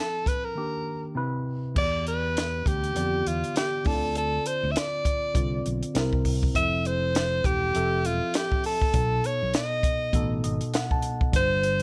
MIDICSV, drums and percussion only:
0, 0, Header, 1, 2, 480
1, 0, Start_track
1, 0, Tempo, 598802
1, 1412, Time_signature, 4, 2, 24, 8
1, 9479, End_track
2, 0, Start_track
2, 0, Title_t, "Drums"
2, 210, Note_on_c, 9, 36, 87
2, 217, Note_on_c, 9, 42, 73
2, 290, Note_off_c, 9, 36, 0
2, 297, Note_off_c, 9, 42, 0
2, 1412, Note_on_c, 9, 36, 96
2, 1412, Note_on_c, 9, 49, 85
2, 1492, Note_off_c, 9, 49, 0
2, 1493, Note_off_c, 9, 36, 0
2, 1657, Note_on_c, 9, 42, 56
2, 1737, Note_off_c, 9, 42, 0
2, 1899, Note_on_c, 9, 42, 95
2, 1908, Note_on_c, 9, 38, 98
2, 1980, Note_off_c, 9, 42, 0
2, 1989, Note_off_c, 9, 38, 0
2, 2132, Note_on_c, 9, 36, 86
2, 2141, Note_on_c, 9, 42, 71
2, 2212, Note_off_c, 9, 36, 0
2, 2221, Note_off_c, 9, 42, 0
2, 2274, Note_on_c, 9, 42, 47
2, 2354, Note_off_c, 9, 42, 0
2, 2371, Note_on_c, 9, 42, 76
2, 2452, Note_off_c, 9, 42, 0
2, 2618, Note_on_c, 9, 42, 63
2, 2698, Note_off_c, 9, 42, 0
2, 2756, Note_on_c, 9, 42, 52
2, 2836, Note_off_c, 9, 42, 0
2, 2852, Note_on_c, 9, 42, 85
2, 2864, Note_on_c, 9, 38, 100
2, 2933, Note_off_c, 9, 42, 0
2, 2944, Note_off_c, 9, 38, 0
2, 3084, Note_on_c, 9, 46, 70
2, 3092, Note_on_c, 9, 36, 96
2, 3164, Note_off_c, 9, 46, 0
2, 3172, Note_off_c, 9, 36, 0
2, 3330, Note_on_c, 9, 42, 92
2, 3411, Note_off_c, 9, 42, 0
2, 3573, Note_on_c, 9, 42, 63
2, 3653, Note_off_c, 9, 42, 0
2, 3814, Note_on_c, 9, 42, 97
2, 3823, Note_on_c, 9, 38, 101
2, 3894, Note_off_c, 9, 42, 0
2, 3903, Note_off_c, 9, 38, 0
2, 4049, Note_on_c, 9, 36, 82
2, 4052, Note_on_c, 9, 42, 79
2, 4129, Note_off_c, 9, 36, 0
2, 4132, Note_off_c, 9, 42, 0
2, 4287, Note_on_c, 9, 36, 86
2, 4290, Note_on_c, 9, 42, 71
2, 4367, Note_off_c, 9, 36, 0
2, 4370, Note_off_c, 9, 42, 0
2, 4535, Note_on_c, 9, 42, 63
2, 4615, Note_off_c, 9, 42, 0
2, 4671, Note_on_c, 9, 42, 49
2, 4751, Note_off_c, 9, 42, 0
2, 4770, Note_on_c, 9, 42, 89
2, 4782, Note_on_c, 9, 38, 109
2, 4850, Note_off_c, 9, 42, 0
2, 4862, Note_off_c, 9, 38, 0
2, 4911, Note_on_c, 9, 36, 85
2, 4991, Note_off_c, 9, 36, 0
2, 5010, Note_on_c, 9, 36, 82
2, 5010, Note_on_c, 9, 46, 69
2, 5090, Note_off_c, 9, 36, 0
2, 5090, Note_off_c, 9, 46, 0
2, 5153, Note_on_c, 9, 36, 85
2, 5233, Note_off_c, 9, 36, 0
2, 5251, Note_on_c, 9, 36, 91
2, 5253, Note_on_c, 9, 42, 89
2, 5332, Note_off_c, 9, 36, 0
2, 5333, Note_off_c, 9, 42, 0
2, 5493, Note_on_c, 9, 42, 59
2, 5573, Note_off_c, 9, 42, 0
2, 5733, Note_on_c, 9, 42, 94
2, 5742, Note_on_c, 9, 38, 111
2, 5813, Note_off_c, 9, 42, 0
2, 5822, Note_off_c, 9, 38, 0
2, 5966, Note_on_c, 9, 36, 89
2, 5972, Note_on_c, 9, 42, 75
2, 6047, Note_off_c, 9, 36, 0
2, 6052, Note_off_c, 9, 42, 0
2, 6210, Note_on_c, 9, 42, 75
2, 6290, Note_off_c, 9, 42, 0
2, 6450, Note_on_c, 9, 42, 66
2, 6530, Note_off_c, 9, 42, 0
2, 6684, Note_on_c, 9, 42, 93
2, 6696, Note_on_c, 9, 38, 112
2, 6765, Note_off_c, 9, 42, 0
2, 6776, Note_off_c, 9, 38, 0
2, 6827, Note_on_c, 9, 36, 85
2, 6907, Note_off_c, 9, 36, 0
2, 6924, Note_on_c, 9, 46, 70
2, 7004, Note_off_c, 9, 46, 0
2, 7066, Note_on_c, 9, 36, 82
2, 7146, Note_off_c, 9, 36, 0
2, 7164, Note_on_c, 9, 42, 98
2, 7165, Note_on_c, 9, 36, 101
2, 7244, Note_off_c, 9, 42, 0
2, 7245, Note_off_c, 9, 36, 0
2, 7408, Note_on_c, 9, 42, 62
2, 7488, Note_off_c, 9, 42, 0
2, 7644, Note_on_c, 9, 42, 91
2, 7653, Note_on_c, 9, 38, 107
2, 7724, Note_off_c, 9, 42, 0
2, 7733, Note_off_c, 9, 38, 0
2, 7882, Note_on_c, 9, 36, 81
2, 7886, Note_on_c, 9, 42, 78
2, 7962, Note_off_c, 9, 36, 0
2, 7966, Note_off_c, 9, 42, 0
2, 8121, Note_on_c, 9, 36, 82
2, 8124, Note_on_c, 9, 42, 75
2, 8201, Note_off_c, 9, 36, 0
2, 8204, Note_off_c, 9, 42, 0
2, 8368, Note_on_c, 9, 42, 66
2, 8448, Note_off_c, 9, 42, 0
2, 8503, Note_on_c, 9, 42, 53
2, 8583, Note_off_c, 9, 42, 0
2, 8606, Note_on_c, 9, 42, 87
2, 8618, Note_on_c, 9, 38, 106
2, 8686, Note_off_c, 9, 42, 0
2, 8698, Note_off_c, 9, 38, 0
2, 8744, Note_on_c, 9, 36, 86
2, 8825, Note_off_c, 9, 36, 0
2, 8837, Note_on_c, 9, 42, 69
2, 8917, Note_off_c, 9, 42, 0
2, 8985, Note_on_c, 9, 36, 89
2, 9066, Note_off_c, 9, 36, 0
2, 9085, Note_on_c, 9, 36, 114
2, 9085, Note_on_c, 9, 42, 97
2, 9165, Note_off_c, 9, 36, 0
2, 9166, Note_off_c, 9, 42, 0
2, 9326, Note_on_c, 9, 42, 65
2, 9406, Note_off_c, 9, 42, 0
2, 9479, End_track
0, 0, End_of_file